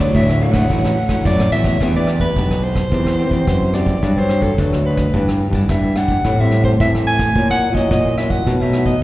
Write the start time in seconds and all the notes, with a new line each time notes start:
Already playing: D3
0.00 F#3 A3 E4 D5
0.15 D2 A2 E5, kick, ride
0.29 E5, cross-stick
0.41 F#3 A3 E4 F#5, ride
0.51 D2, kick, cross-stick, ride
0.70 A1 D3 F#3 A3 E4, kick, ride
0.85 cross-stick
0.96 ride
1.09 F#3 A3 E4, kick, cross-stick, ride
1.25 F#2 A2 D5, kick, ride
1.40 cross-stick
1.52 E2 F#3 A3 E4 E5, ride
1.64 kick, cross-stick, ride
1.81 E2 E3 B3 D4 G4, kick, cross-stick, closed hi-hat
1.95 B3 D4 G4 D5, closed hi-hat
2.07 cross-stick, closed hi-hat
2.20 B4, kick
2.36 B1 B2 B3 D4 G4, kick, closed hi-hat
2.51 cross-stick, closed hi-hat
2.63 C5, closed hi-hat
2.76 kick, cross-stick
2.92 E2 E3 B3 C4 G4, kick, closed hi-hat
3.07 cross-stick, closed hi-hat
3.18 B3 C4 G4, closed hi-hat
3.29 E2 B3 C4 G4, kick, closed hi-hat
3.47 F#2 E3 C5, kick, cross-stick, closed hi-hat
3.62 closed hi-hat
3.74 B3 C4 G4 D5, cross-stick, closed hi-hat
3.86 kick
4.03 G2 F#3 B3 D4, kick, cross-stick, closed hi-hat
4.17 F#3 B3 D4 C5
4.29 cross-stick, closed hi-hat
4.42 A4, kick, closed hi-hat
4.58 D2 D3 F#3 B3 D4, kick, closed hi-hat
4.73 cross-stick
4.85 B4, closed hi-hat
4.97 kick, cross-stick
5.14 G2 E3 B3 D4, kick, closed hi-hat
5.29 cross-stick, closed hi-hat
5.40 closed hi-hat
5.50 G2 E3 B3 D4, kick
5.69 G2 E5, kick, cross-stick, closed hi-hat
5.96 E3 B3 D4 F#5, cross-stick, closed hi-hat
6.08 kick, closed hi-hat
6.25 A2 G3 C4 E4, kick, cross-stick, closed hi-hat
6.40 G3 C4 E4 E5, closed hi-hat
6.51 cross-stick, closed hi-hat
6.64 C5, kick
6.80 A2 E3 G3 C4 E4 E5, kick, closed hi-hat
6.95 cross-stick, closed hi-hat
7.07 G#5, closed hi-hat
7.19 kick, cross-stick
7.35 A#2 F#3 C#4 E4, kick, closed hi-hat
7.50 F#5, cross-stick, closed hi-hat
7.62 closed hi-hat
7.72 A#2 F#3 C#4 E4 D#5, kick
7.91 A#2 D#5, kick, cross-stick, closed hi-hat
8.06 closed hi-hat
8.18 F#3 C#4 E4 E5, cross-stick, closed hi-hat
8.30 F#5, kick
8.47 B2 F#3 A3 D#4, kick, cross-stick, closed hi-hat
8.61 F#3 A3 D#4 E5
8.73 cross-stick, closed hi-hat
8.86 D#5, kick, closed hi-hat